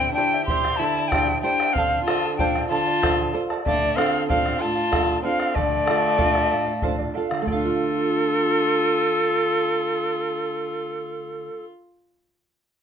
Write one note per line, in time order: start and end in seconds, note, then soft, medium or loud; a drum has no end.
0.00 0.47 D3 medium
0.00 0.12 C4 medium
0.00 0.16 E4 medium
0.00 0.17 G4 medium
0.00 0.16 C5 medium
0.00 0.17 D5 medium
0.00 0.17 E5 medium
0.00 0.13 G5 medium
0.00 bombo rim soft
0.13 0.44 D4 medium
0.13 0.45 G5 medium
0.17 0.48 E4 soft
0.17 0.33 E4 medium
0.17 0.48 G4 soft
0.17 0.33 C5 medium
0.17 0.49 C5 medium
0.17 0.33 D5 medium
0.17 0.33 E5 medium
0.34 0.49 E4 soft
0.34 0.50 D5 soft
0.34 0.49 E5 medium
0.46 1.00 E4 soft
0.46 0.81 G4 medium
0.46 1.00 G4 soft
0.46 0.78 C6 medium
0.46 bombo low medium
0.50 0.82 E4 medium
0.50 0.81 G4 medium
0.50 1.00 C5 soft
0.50 0.81 C5 medium
0.50 0.82 D5 medium
0.50 0.82 E5 medium
0.65 bombo rim medium
0.76 1.42 D3 medium
0.76 1.12 E4 medium
0.76 1.10 A5 medium
0.82 0.98 E4 medium
0.82 0.97 C5 medium
0.82 0.98 D5 medium
0.82 0.97 E5 medium
0.96 1.13 E4 soft
0.96 1.13 D5 soft
0.96 1.13 E5 soft
0.96 bombo rim soft
1.08 1.40 D4 medium
1.08 1.42 E4 soft
1.08 1.41 G5 medium
1.08 bombo rim medium
1.08 bombo low medium
1.12 1.45 E4 medium
1.12 1.43 G4 soft
1.12 1.45 G4 medium
1.12 1.43 C5 soft
1.12 1.43 C5 medium
1.12 1.45 D5 medium
1.12 1.45 E5 medium
1.28 bombo rim soft
1.41 1.76 D4 medium
1.41 1.69 E4 soft
1.41 1.69 G4 soft
1.41 1.70 C5 soft
1.41 1.60 C5 medium
1.41 1.75 G5 medium
1.41 bombo rim soft
1.46 1.61 E4 medium
1.46 1.61 D5 medium
1.46 1.61 E5 medium
1.60 1.77 E4 soft
1.60 1.77 D5 soft
1.60 1.77 E5 medium
1.60 bombo rim medium
1.73 2.38 D3 medium
1.73 2.03 C4 medium
1.73 2.05 F5 loud
1.73 bombo low medium
1.77 2.07 A4 medium
1.77 2.09 C5 medium
1.77 2.08 D5 medium
1.77 2.07 F5 medium
1.77 2.08 A5 medium
1.92 bombo rim soft
2.04 2.35 F4 medium
2.04 2.38 F4 soft
2.04 2.38 A4 soft
2.04 2.36 A5 medium
2.04 bombo rim medium
2.08 2.24 A4 medium
2.08 2.39 C5 medium
2.08 2.24 D5 medium
2.08 2.24 F5 medium
2.08 2.22 A5 medium
2.24 2.39 A4 soft
2.24 2.39 D5 soft
2.24 2.39 A5 soft
2.37 2.68 D4 medium
2.37 2.90 F4 soft
2.37 2.90 A4 soft
2.37 2.69 A4 medium
2.37 2.71 C5 medium
2.37 2.91 C5 medium
2.37 2.70 D5 medium
2.37 2.69 F5 medium
2.37 2.67 G5 medium
2.37 2.71 A5 medium
2.37 bombo low medium
2.56 bombo rim medium
2.68 3.33 D3 medium
2.68 3.38 F4 medium
2.68 2.87 A4 medium
2.68 2.86 D5 medium
2.68 2.87 F5 medium
2.68 3.37 A5 loud
2.72 2.85 A5 medium
2.86 3.01 A4 soft
2.86 3.01 D5 soft
2.86 3.02 A5 soft
2.86 bombo rim soft
3.02 3.33 F4 soft
3.02 3.32 A4 medium
3.02 3.33 A4 soft
3.02 3.34 C5 medium
3.02 3.33 C5 soft
3.02 3.33 D5 medium
3.02 3.32 F5 medium
3.02 3.33 A5 medium
3.02 bombo rim medium
3.02 bombo low medium
3.19 bombo rim soft
3.33 3.60 F4 soft
3.33 3.50 A4 medium
3.33 3.60 A4 soft
3.33 3.60 C5 soft
3.33 3.50 D5 medium
3.33 3.50 F5 medium
3.33 3.49 A5 medium
3.33 bombo rim soft
3.50 3.64 A4 soft
3.50 3.66 D5 soft
3.50 3.66 A5 medium
3.50 bombo rim medium
3.64 4.28 D3 medium
3.64 3.98 A3 medium
3.64 3.95 A4 medium
3.64 3.97 D5 medium
3.64 3.96 D5 medium
3.64 3.96 F5 medium
3.64 bombo low medium
3.82 bombo rim soft
3.96 4.28 C4 medium
3.96 4.30 D4 soft
3.96 4.30 F4 soft
3.96 4.13 A4 medium
3.96 4.31 A4 soft
3.96 4.12 D5 medium
3.96 4.28 F5 medium
3.96 4.11 F5 medium
3.96 bombo rim medium
4.12 4.28 D5 soft
4.12 4.29 F5 soft
4.28 4.60 C4 medium
4.28 4.82 D4 soft
4.28 4.81 F4 soft
4.28 4.59 A4 medium
4.28 4.82 A4 medium
4.28 4.59 D5 medium
4.28 4.63 F5 medium
4.28 4.60 F5 medium
4.28 bombo low medium
4.46 bombo rim medium
4.59 5.22 F4 medium
4.59 4.77 A4 medium
4.59 4.75 D5 medium
4.59 4.74 F5 medium
4.59 5.23 A5 loud
4.63 5.24 A2 medium
4.75 4.90 D5 soft
4.75 4.91 F5 soft
4.75 bombo rim soft
4.91 5.24 D4 soft
4.91 5.25 F4 soft
4.91 5.21 A4 medium
4.91 5.25 A4 soft
4.91 5.21 D5 medium
4.91 5.22 F5 medium
4.91 bombo rim medium
4.91 bombo low medium
5.09 bombo rim soft
5.22 5.56 C4 medium
5.22 5.50 D4 soft
5.22 5.39 A4 soft
5.22 5.39 D5 medium
5.22 5.38 F5 medium
5.22 5.57 F5 medium
5.22 bombo rim soft
5.26 5.51 F4 soft
5.26 5.51 A4 soft
5.39 5.54 D5 soft
5.39 5.55 F5 soft
5.39 bombo rim medium
5.55 6.19 D3 medium
5.55 7.14 A3 medium
5.55 5.84 A4 medium
5.55 7.15 D5 medium
5.55 5.85 D5 medium
5.55 5.86 F5 medium
5.55 bombo rim soft
5.55 bombo low medium
5.85 6.19 D4 soft
5.85 6.03 A4 medium
5.85 6.02 D5 medium
5.85 6.01 F5 medium
5.85 bombo rim medium
5.90 6.20 F4 soft
5.90 6.21 A4 medium
6.02 6.17 D5 soft
6.02 6.17 F5 soft
6.02 bombo rim soft
6.17 6.71 D4 soft
6.17 6.72 F4 soft
6.17 6.49 A4 medium
6.17 6.50 D5 medium
6.17 6.50 F5 medium
6.17 bombo low medium
6.22 6.72 A4 soft
6.35 bombo rim medium
6.50 7.14 A2 medium
6.50 6.67 A4 medium
6.50 6.66 D5 medium
6.50 6.65 F5 medium
6.50 bombo rim soft
6.66 6.81 D5 soft
6.66 6.82 F5 soft
6.82 7.16 D4 soft
6.82 7.16 F4 soft
6.82 7.12 A4 medium
6.82 7.16 A4 soft
6.82 6.99 C5 medium
6.82 7.13 D5 medium
6.82 7.14 F5 medium
6.82 bombo low medium
6.99 7.14 D5 medium
6.99 bombo rim soft
7.14 7.42 D4 soft
7.14 7.42 F4 soft
7.14 7.30 A4 medium
7.14 7.42 A4 soft
7.14 7.30 D5 medium
7.14 7.28 F5 medium
7.14 7.46 F5 medium
7.29 11.49 D3 medium
7.29 7.46 D5 soft
7.29 7.46 F5 medium
7.29 bombo rim medium
7.42 11.60 A3 soft
7.42 11.63 A4 medium
7.46 11.63 F4 medium
7.46 11.64 A4 medium
7.46 11.69 D5 medium
7.46 bombo low medium
7.52 11.72 D4 soft
7.52 11.74 F5 medium
7.65 11.83 F4 medium